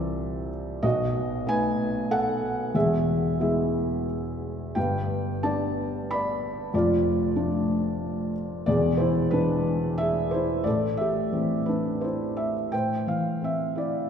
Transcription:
felt piano
Already playing: C2 E3 G3 C4 E4 F4 G4 C5 D5 E5
0.83 B1 B2 F#4 D#5
1.47 A3 B3 D#4 B4 G#5
2.11 A4 F#5
2.74 E1 E2 G#4 E5
3.40 G#3 B3 E4 G#4 E5
4.75 G1 G2 B4 G5
5.43 G3 B3 D4 D5 A5
6.11 D5 B5
6.74 F1 F2 F4 D5
7.36 F3 A3 D4
8.66 E1 E2 G#4 D5
8.97 E4 C5
9.31 E3 G#3 D4 B4
9.98 G#4 E5
10.31 E4 C5
10.64 A1 A2 A4 D5
10.97 G4 E5
11.32 E3 A3 C4
11.66 D4 B4
12.01 E4 C5
12.37 E5
12.72 A2 C5 G5
13.07 E3 F5
13.41 C4 E5
13.75 E4 D5

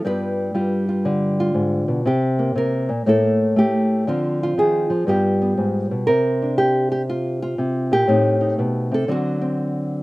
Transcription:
nylon-string guitar
0.05 G2 G3 B3 F4 B4
0.55 G3 F4
0.89 F4
1.05 D3
1.40 F4
1.54 G#2
1.88 B2
2.06 C3 G4
2.39 A#3
2.55 C3 A#4
2.89 A#2
3.06 A2 A3 A#3 E4 A4
3.56 A3 G4
4.07 D3 F3 C4 F4
4.43 F4
4.58 D#3 G#4
4.90 F3
5.07 G2 G3 B3 F4 G4
5.42 B3
5.58 G#2
5.91 B2
6.07 C3 A#4
6.42 D4
6.58 G4
6.92 G4
7.10 F4
7.42 F4
7.58 C3
7.91 A#2 G4
8.07 A2 A3 C4 D#4
8.41 D#4
8.59 B2
8.92 C3 A4
9.08 D3 F#3 C4 F#4
9.41 C4

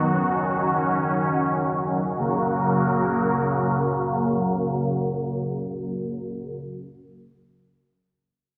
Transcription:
supersaw synth
Already playing: D#3 F#3 B3 F#4
0.13 C#4
2.18 C#3 F#3 A#3 F#4 A#4

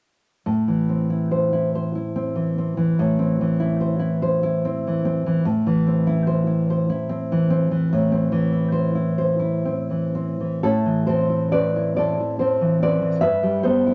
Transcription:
nylon-string guitar
0.46 A2
0.68 E3
0.89 C4
1.10 E4
1.31 C5
1.53 E4
1.75 C5
1.95 E4
2.16 C4
2.36 E3
2.58 C4
2.77 E3
2.99 A2
3.19 C4
3.41 E3
3.60 E4
3.81 C5
3.99 E4
4.22 C5
4.43 E4
4.65 C4
4.87 E3
5.05 C4
5.26 E3
5.45 A2
5.67 E3
5.87 C4
6.07 E4
6.27 C5
6.47 E4
6.70 C5
6.90 E4
7.09 C4
7.32 E3
7.50 C4
7.71 E3
7.93 A2
8.12 C4
8.32 E3
8.52 E4
8.72 C5
8.95 E4
9.18 C5
9.39 E4
9.65 C4
9.90 E3
10.15 C4
10.40 E3
10.63 A2 E4 A4
10.86 E3
11.07 C4 A4 C5
11.29 E4
11.52 C4 B4 D5
11.76 E4
11.96 C4 A4 D5
12.20 E4
12.39 C4 A4 C5
12.61 E3
12.82 C4 B4 D5
13.02 E3
13.21 G2 B4 E5
13.43 G3
13.63 B3 A4 C5
13.86 E4

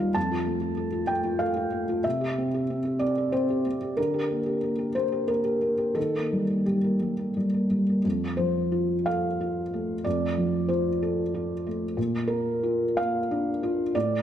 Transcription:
felt piano
Already playing: D#2 G3 D#4 A#4 F5
0.00 F4
0.14 F2 A5
0.31 F4
0.46 A3
0.62 F4
0.77 A4
0.92 F4
1.07 A3 G5
1.25 F4
1.39 A4 F5
1.56 F4
1.72 A3
1.89 F4
2.04 C3 E5
2.21 G4
2.38 C4
2.54 G4
2.70 C4
2.85 G4
2.99 C4 D5
3.18 G4
3.32 C4 C5
3.50 G4
3.66 C4
3.82 G4
3.97 D3 A#4
4.14 G4
4.30 A#3
4.46 G4
4.63 A#3
4.78 G4
4.95 A#3 C5
5.12 G4
5.28 A#3 A#4
5.44 G4
5.62 A#3
5.78 G4
5.95 D#3 A4
6.16 A#3
6.33 G3
6.50 A#3
6.66 G3 G4
6.84 A#3
7.02 G3
7.19 A#3
7.37 G3
7.54 A#3
7.70 G3
7.89 A#3
8.05 F2
8.37 F3 C5
8.72 F4
9.06 A4 F5
9.41 F4
9.74 A3
10.04 F2 D5
10.38 F3
10.68 F4 C5
11.03 A4
11.34 F4
11.67 A3
11.97 A#2
12.28 A#3 A#4
12.63 F4
12.97 A#3 F5
13.31 D4
13.63 F4
13.95 A2 D5

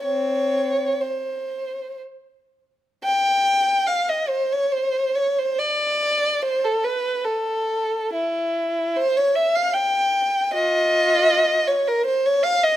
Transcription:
violin
0.03 C4 C#5
1.01 C5
3.04 G5
3.87 F5
4.09 D#5
4.29 C5
4.52 C#5
4.72 C5
5.15 C#5
5.39 C5
5.59 D5
6.42 C5
6.65 A4
6.84 B4
7.25 A4
8.13 E4
8.97 C5
9.17 C#5
9.35 E5
9.56 F5
9.73 G5
10.53 F4 D#5
11.67 C#5
11.88 A#4
12.05 C5
12.26 C#5
12.43 F5
12.63 D#5

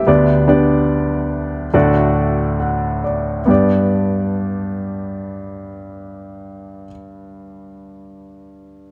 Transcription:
grand piano
Already playing: A3 E4 G4 C5 E5 G5
0.07 D2 D3 B3 D4 G4 D5
0.47 B3 D4 G4 D5
1.74 D2 A2 A3 D4 F#4 D5
2.60 F#5
3.04 D5
3.46 G2 B3 D4 G4
3.50 D5

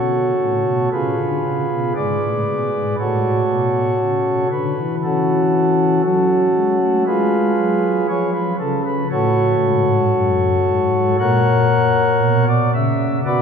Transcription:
pipe organ
Already playing: B2 F#4 A4 C#5
0.40 A2
0.66 B2
0.92 C#3 F4 G#4 B4
1.19 D3
1.44 C#3
1.70 B2
1.95 G#2 G#4 B4 D5
2.22 A2
2.48 B2
2.74 G#2
3.00 A2 F#4 A4 C#5
3.51 B2
4.01 C#3
4.52 D3 B4
4.77 E3
5.03 C#4 F#4 A4
6.03 F#3 C#4 F#4 A4
6.54 G#3
6.80 A3
7.06 G#3 F4 G#4 B4
7.58 F#3
8.08 F3 F4 G#4 C#5
8.34 B4
8.60 C#3 A4
8.86 B4
9.11 A2 F#4 A4 C#5
9.62 G#2
10.13 F#2
10.67 G#2
11.19 A#2 A#4 C#5 F#5
12.23 B2
12.48 D5
12.74 C#3 E5
13.25 B2 F#4 B4 D5

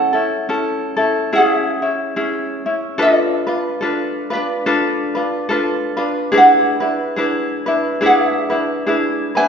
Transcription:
ukulele
Already playing: C#4 E4 A4 F#5
0.13 C#4 E4 A4
0.49 C#4 E4 A4
0.97 C#4 E4 A4
1.33 C#4 E4 G#4 E5
1.38 G#4
1.82 C#4 E4
2.16 C#4 E4 G#4
2.66 C#4 E4
2.98 D4 F4 A4 B4
3.02 F4 D#5
3.19 D5
3.47 D4 F4 B4
3.81 D4 F4 A4 B4
4.30 D4 F4 B4
4.35 D4
4.66 D4 F4 A4 B4
5.15 D4 F4 B4
5.49 D4 F4 A4 B4
5.97 D4 F4 B4
6.32 D4 E4 G#4 B4
6.37 B4 F#5
6.80 D4 E4 B4
7.16 D4 E4 G#4 B4
7.66 D4 E4 B4
8.01 D4 E4 G#4 B4
8.06 G#4 F5
8.23 E5
8.50 D4 E4 B4
8.86 D4 E4 G#4 B4
9.35 D4 E4 B4 G#5

